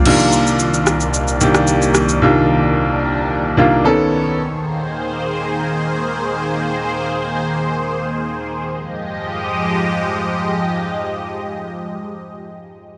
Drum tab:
CC |x---------------|----------------|----------------|----------------|
SH |-xxxxxxxxxxxxxxx|----------------|----------------|----------------|
SD |------r----r--r-|----------------|----------------|----------------|

CC |----------------|----------------|
SH |----------------|----------------|
SD |----------------|----------------|